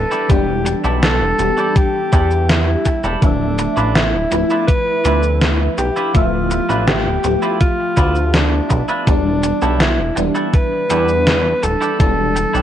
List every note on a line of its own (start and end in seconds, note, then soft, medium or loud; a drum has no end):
0.00 0.28 E3 loud
0.00 0.29 G3 medium
0.00 0.30 B3 medium
0.00 0.31 D4 loud
0.00 0.33 A4 loud
0.11 0.30 D4 medium
0.11 0.30 E4 medium
0.11 0.30 G4 medium
0.11 0.30 A4 medium
0.11 cabasa soft
0.28 0.75 E1 loud
0.28 1.34 E3 loud
0.28 1.34 G3 medium
0.28 1.35 B3 medium
0.28 1.35 D4 loud
0.28 0.77 G4 loud
0.28 kick loud
0.28 closed hi-hat medium
0.28 cabasa soft
0.66 muted clean electric guitar stroke medium
0.66 closed hi-hat medium
0.66 cabasa medium
0.84 1.23 B1 loud
0.84 1.03 D4 medium
0.84 1.03 E4 medium
0.84 1.03 G4 medium
0.84 1.03 A4 loud
0.84 cabasa soft
1.03 1.78 A4 loud
1.03 snare loud
1.03 closed hi-hat medium
1.03 cabasa soft
1.21 1.33 E1 medium
1.38 1.51 E1 medium
1.38 3.17 E3 medium
1.38 3.17 G3 medium
1.38 3.18 B3 medium
1.38 3.18 G4 medium
1.38 muted clean electric guitar stroke loud
1.38 closed hi-hat medium
1.38 cabasa medium
1.58 1.76 D4 medium
1.58 1.76 E4 medium
1.58 1.76 G4 medium
1.58 1.76 A4 medium
1.58 cabasa soft
1.76 2.51 G4 loud
1.76 kick loud
1.76 closed hi-hat medium
1.76 cabasa soft
2.13 2.76 E2 loud
2.13 2.31 D4 medium
2.13 2.31 E4 medium
2.13 2.31 G4 medium
2.13 2.31 A4 medium
2.13 kick loud
2.13 closed hi-hat medium
2.13 cabasa medium
2.31 cabasa soft
2.49 3.04 E4 loud
2.49 snare loud
2.49 closed hi-hat medium
2.49 cabasa soft
2.85 muted clean electric guitar stroke loud
2.85 kick medium
2.85 closed hi-hat medium
2.85 cabasa medium
3.04 3.16 E1 loud
3.04 3.22 D4 medium
3.04 3.22 E4 medium
3.04 3.22 G4 medium
3.04 3.23 A4 loud
3.04 cabasa soft
3.21 3.67 D1 loud
3.21 4.27 F3 medium
3.21 4.27 A3 medium
3.21 4.28 B3 medium
3.21 3.92 D4 loud
3.21 4.28 E5 loud
3.21 kick loud
3.21 closed hi-hat medium
3.21 cabasa soft
3.59 muted clean electric guitar stroke medium
3.59 closed hi-hat medium
3.59 cabasa medium
3.77 4.15 A1 medium
3.77 3.95 D4 medium
3.77 3.95 E4 medium
3.77 3.96 F4 medium
3.77 3.96 B4 medium
3.77 cabasa soft
3.95 4.65 E4 loud
3.95 snare loud
3.95 closed hi-hat medium
3.95 cabasa soft
4.14 4.26 D1 medium
4.31 4.44 D1 medium
4.31 4.47 F3 medium
4.31 4.47 A3 medium
4.31 4.47 B3 medium
4.31 4.47 E4 loud
4.31 muted clean electric guitar stroke loud
4.31 closed hi-hat medium
4.31 cabasa medium
4.50 4.69 D4 medium
4.50 4.69 E4 medium
4.50 4.69 F4 medium
4.50 4.69 B4 medium
4.50 cabasa soft
4.68 5.47 B4 loud
4.68 kick loud
4.68 closed hi-hat medium
4.68 cabasa soft
5.03 5.68 D2 loud
5.03 6.10 F3 medium
5.03 6.10 A3 medium
5.03 6.11 B3 medium
5.03 5.23 D4 medium
5.03 5.24 E4 medium
5.03 5.24 F4 medium
5.03 5.24 B4 medium
5.03 6.11 E5 medium
5.03 closed hi-hat medium
5.03 cabasa medium
5.23 cabasa soft
5.41 snare loud
5.41 closed hi-hat medium
5.41 cabasa soft
5.78 5.90 B1 medium
5.78 6.16 G4 loud
5.78 muted clean electric guitar stroke medium
5.78 closed hi-hat medium
5.78 cabasa medium
5.96 6.15 D4 medium
5.96 6.15 E4 medium
5.96 6.15 F4 medium
5.96 6.15 B4 medium
5.96 cabasa soft
6.13 6.60 D1 loud
6.13 7.19 F3 loud
6.13 7.20 A3 medium
6.13 7.20 B3 medium
6.13 6.87 F4 loud
6.13 7.21 E5 loud
6.13 kick loud
6.13 closed hi-hat medium
6.13 cabasa soft
6.51 muted clean electric guitar stroke medium
6.51 closed hi-hat medium
6.51 cabasa medium
6.69 7.07 A1 medium
6.69 6.88 D4 medium
6.69 6.88 E4 medium
6.69 6.88 F4 medium
6.69 6.88 B4 medium
6.69 cabasa soft
6.88 7.57 G4 medium
6.88 snare loud
6.88 closed hi-hat medium
6.88 cabasa soft
7.06 7.18 D1 medium
7.23 7.37 D1 medium
7.23 9.03 F3 medium
7.23 9.03 A3 medium
7.23 9.04 B3 medium
7.23 9.04 G4 loud
7.23 muted clean electric guitar stroke loud
7.23 closed hi-hat medium
7.23 cabasa medium
7.42 7.61 D4 medium
7.42 7.61 E4 medium
7.42 7.61 F4 medium
7.42 7.61 B4 loud
7.42 cabasa soft
7.61 8.36 F4 loud
7.61 kick loud
7.61 closed hi-hat medium
7.61 cabasa soft
7.97 8.61 D2 medium
7.97 8.16 D4 medium
7.97 8.16 E4 medium
7.97 8.16 F4 medium
7.97 8.16 B4 loud
7.97 kick loud
7.97 closed hi-hat medium
7.97 cabasa medium
8.16 cabasa soft
8.34 8.89 D4 medium
8.34 snare loud
8.34 closed hi-hat medium
8.34 cabasa soft
8.70 8.83 B1 medium
8.70 muted clean electric guitar stroke loud
8.70 kick medium
8.70 closed hi-hat medium
8.70 cabasa medium
8.89 9.07 D4 medium
8.89 9.07 E4 medium
8.89 9.07 F4 medium
8.89 9.08 B4 medium
8.89 cabasa soft
9.06 9.52 E1 loud
9.06 10.12 E3 medium
9.06 10.13 G3 medium
9.06 10.13 B3 medium
9.06 9.77 D4 loud
9.06 10.14 D4 loud
9.06 kick loud
9.06 closed hi-hat medium
9.06 cabasa soft
9.43 muted clean electric guitar stroke medium
9.43 closed hi-hat medium
9.43 cabasa medium
9.62 10.00 B1 medium
9.62 9.81 D4 medium
9.62 9.81 E4 medium
9.62 9.81 G4 medium
9.62 9.81 A4 loud
9.62 cabasa soft
9.80 10.24 E4 medium
9.80 snare loud
9.80 closed hi-hat medium
9.80 cabasa soft
9.99 10.11 E1 medium
10.16 10.30 E1 medium
10.16 10.32 E3 medium
10.16 10.32 G3 medium
10.16 10.33 B3 medium
10.16 10.33 D4 loud
10.16 muted clean electric guitar stroke loud
10.16 closed hi-hat medium
10.16 cabasa medium
10.35 10.54 D4 medium
10.35 10.54 E4 medium
10.35 10.54 G4 medium
10.35 10.54 A4 medium
10.35 cabasa soft
10.54 11.65 B4 loud
10.54 kick loud
10.54 closed hi-hat medium
10.54 cabasa soft
10.89 11.54 E2 loud
10.89 11.95 E3 medium
10.89 11.95 G3 medium
10.89 11.96 B3 medium
10.89 11.09 D4 medium
10.89 11.96 D4 loud
10.89 11.09 E4 medium
10.89 11.09 G4 medium
10.89 11.09 A4 loud
10.89 closed hi-hat medium
10.89 cabasa medium
11.09 cabasa soft
11.27 snare loud
11.27 closed hi-hat medium
11.27 cabasa soft
11.63 11.76 D1 medium
11.63 12.00 A4 loud
11.63 muted clean electric guitar stroke loud
11.63 closed hi-hat medium
11.63 cabasa medium
11.81 12.00 D4 medium
11.81 12.00 E4 medium
11.81 12.00 G4 medium
11.81 12.00 A4 loud
11.81 cabasa soft
11.99 12.45 E1 loud
11.99 12.62 E3 loud
11.99 12.62 G3 medium
11.99 12.62 B3 medium
11.99 12.62 D4 loud
11.99 12.62 A4 loud
11.99 kick loud
11.99 closed hi-hat medium
11.99 cabasa soft
12.36 muted clean electric guitar stroke medium
12.36 closed hi-hat medium
12.36 cabasa medium
12.53 12.62 B1 medium
12.53 12.62 D4 medium
12.53 12.62 E4 medium
12.53 12.62 G4 medium
12.53 12.62 A4 loud
12.53 cabasa soft